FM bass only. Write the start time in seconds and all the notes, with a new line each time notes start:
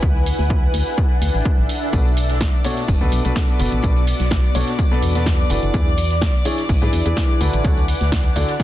0.03 D2
0.39 D2
0.74 D2
1.22 D2
1.34 A1
1.58 A1
1.93 B1
2.88 F#1
3.01 D2
3.12 B1
3.25 B1
3.60 F#1
3.72 A1
3.83 B1
4.20 B1
4.55 B1
5.03 E2
5.50 F#1
5.63 F#1
5.74 E2
6.69 B1
6.82 G#2
6.93 E2
7.06 E2
7.41 D2
7.53 A1
7.64 D2
8.01 D2
8.36 D2